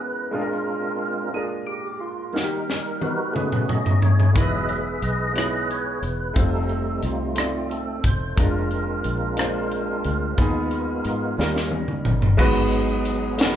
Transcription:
Already playing: E3 G#3 B3 C#4 E4 A#4 B4
0.00 B4
0.31 A#2 G#3 A#3 C4 D4 F4 G#4 A#4
0.41 A#4
1.33 G#3 A#3 D4 F4 G#4 A#4
1.67 G4
2.00 F4
2.33 D#3 G3 A#3 D#4 F#4 A#4, snare
2.43 G4
2.70 snare
3.01 D#4 F#4 B4, high tom
3.32 B2 A3 C#4 D#4 G#4, mid tom
3.36 B4
3.52 mid tom
3.69 D#5, mid tom
3.86 floor tom
4.02 C#5, floor tom
4.20 floor tom
4.33 E1 E3 F#3 G#3 B3 D#4 E4 A#4, kick, closed hi-hat
4.37 G#3 G#4 B4 D#5 E5
4.42 B4
4.69 closed hi-hat
5.02 B1 G#4 B4 D#5, closed hi-hat
5.32 G#3 B3 D#4 E4 C#5, closed hi-hat
5.38 cross-stick
5.70 C#5, closed hi-hat
6.02 E1 B4, closed hi-hat
6.34 F1 G3 A3 C4 D#4 F4 A4 C5, kick, closed hi-hat
6.69 closed hi-hat
7.03 C2 A3 C4 F4, cross-stick, closed hi-hat
7.35 A3 C4 D#4 F4 D5, cross-stick, closed hi-hat
7.70 A4, closed hi-hat
8.04 E1 C5, kick, closed hi-hat
8.36 F1 G#3 A#3 C4 D4 F4 A#4, kick, closed hi-hat
8.71 closed hi-hat
9.04 A#1, closed hi-hat
9.37 G#3 A#3 D4 F4 C5, cross-stick, closed hi-hat
9.71 closed hi-hat
10.04 D2, closed hi-hat
10.37 D#2 D#3 G#3 B3 D#4, kick, closed hi-hat
10.42 G#4
10.71 closed hi-hat
11.05 G#2, cross-stick, closed hi-hat
11.37 D#2 D#3 G3 A#3 C#4, snare
11.41 D#4 A#4
11.56 snare
11.71 high tom
11.88 mid tom
12.05 G1, mid tom
12.22 floor tom
12.37 G#1 G#2 F#3 G#3 B3 D#4 F#4 G#4 B4, kick, crash
12.72 closed hi-hat
13.05 closed hi-hat
13.38 G#3 A#3 D#4 F#4 A#4, snare, closed hi-hat
13.45 B3

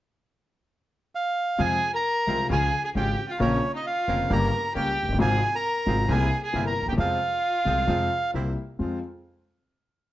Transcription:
1.15 F5
1.58 F2 C3 F3 G#3 C4 F4 G#4 G#5
1.93 A#4 A#5
2.27 C2 C3 F3 G#3 C4 F4
2.50 C#2 C#3 F3 G#3 C#4 F4 G#4 G#5
2.84 G#4 G#5
2.94 G#1 G#2 C#3 F3 G#3 C#4 F4 G4 G5
3.29 F4 F5
3.40 A#1 A#2 C#3 A#3 C4 C#4 F4 A#4 C#5
3.74 D#4 D#5
3.85 F4 F5
4.07 F1 F2 C#3 A#3 C4 C#4 F4 A#4
4.30 G1 G2 C#3 G3 A#3 C#4 G4 A#4 A#5
4.75 C#2 C#3 G3 A#3 C#4 G4 G5
5.03 F1
5.08 F#1
5.12 G1
5.18 G#1 G#2 C3 F3 G#3 C4 F4 G#4 G#5
5.55 A#4 A#5
5.86 G#1 G#2 C3 F3 G#3 C4 F4
6.09 C2 C3 G3 A#3 C4 E4 G#4 G#5
6.44 G#4 G#5
6.53 G1 G2 C3 G3 A#3 C4 E4
6.66 A#4 A#5
6.81 D2
6.87 D#2 G4 G5
6.92 E2
6.97 F2 C3 F3 G#3 C4 F4 F5
7.65 C2 C3 F3 G#3 C4 F4
7.86 F2 C3 F3 G#3 C4 F4
8.34 C2 C3 G3 A#3 C4 E4
8.79 F2 G#3 C4 F4

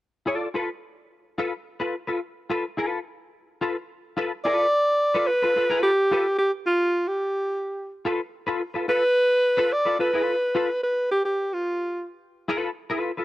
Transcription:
0.26 F4 A4 D5
0.54 F4 A4 B4
1.38 F4 A4 B4
1.80 F4 A4 B4
2.07 F4 A4 B4
2.50 F4 A4 B4
2.77 F4 A4 B4
3.61 F4 A4 B4
4.17 F4 A4 B4
4.44 F4 A4 B4 D5
5.14 F4 A4 B4
5.27 B4
5.42 F4 A4 B4
5.56 F4 A4 B4
5.70 F4 A4 B4
5.83 G4
6.11 F4 A4 B4
6.38 G4
6.66 F4
7.08 G4
8.05 F4 A4 B4
8.47 F4 A4 B4
8.74 F4 A4 B4
8.88 F4 A4 B4
9.57 F4 A4 B4
9.72 D5
9.85 F4 A4 B4
9.99 F4 A4 B4
10.13 F4 A4 B4
10.55 F4 A4 B4
10.83 B4
11.11 G4
11.25 G4
11.53 F4
12.48 F4 A4 B4
12.90 F4 A4 B4
13.17 F4 A4 B4

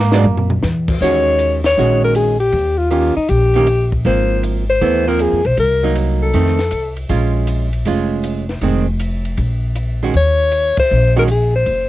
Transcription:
Already playing: G#2 A#3
0.12 F#3 G#3 D4, snare
0.24 F#2, mid tom
0.37 floor tom
0.50 floor tom
0.62 E2, snare, hi-hat pedal
0.88 kick, crash
1.01 D#2 D#3 G#3 C#4 F#4 C#5, kick
1.39 hi-hat pedal, ride
1.64 C#5, snare, ride
1.77 A#1 D#3 G#3 C#4 F#4
2.05 A#4
2.15 G#4, hi-hat pedal, ride
2.40 G4, ride
2.52 D#2, kick, ride
2.78 F4
2.91 D#3 A#3 C#4 F4 G4, hi-hat pedal, ride
3.17 D#4, muted upright bass stroke
3.29 A#1 G4, kick, ride
3.54 D#3 A#3 C#4 G4, ride
3.67 hi-hat pedal, ride
3.92 kick
4.05 G#1 F3 A#3 C4 C5, kick, ride
4.43 hi-hat pedal, ride
4.70 C5
4.81 D#2 E3 A3 B3, kick, ride
5.07 F3 A#3 C4 A#4
5.19 G#4, hi-hat pedal, ride
5.32 F2
5.45 B1 C5, ride
5.57 C2 A#4, kick, ride
5.83 F#3 A#3 D#4
5.95 hi-hat pedal, ride
6.23 A4
6.34 F2 D#3 A3 C4, kick, ride
6.46 snare
6.59 snare, ride
6.71 C2, hi-hat pedal, ride
6.97 ride
7.09 A#1 G#3 C#4 F4, kick, ride
7.47 hi-hat pedal, ride
7.73 ride
7.85 F1 G#3 C#4 F4, kick, ride
8.23 hi-hat pedal, ride
8.49 snare, ride
8.61 F1 D#3 G#3 C4, kick, ride
8.99 hi-hat pedal, ride
9.25 ride
9.37 A#1, kick, ride
9.75 hi-hat pedal, ride
10.03 D#3 G#3 C#4 F#4
10.14 D#2 C#5, kick, ride
10.51 hi-hat pedal, ride
10.77 C5, muted upright bass stroke, kick, ride
10.91 A#1
11.16 D#3 G#3 C#4 F#4 A#4
11.28 G#4, hi-hat pedal, ride
11.56 C5
11.66 F#1, kick, ride

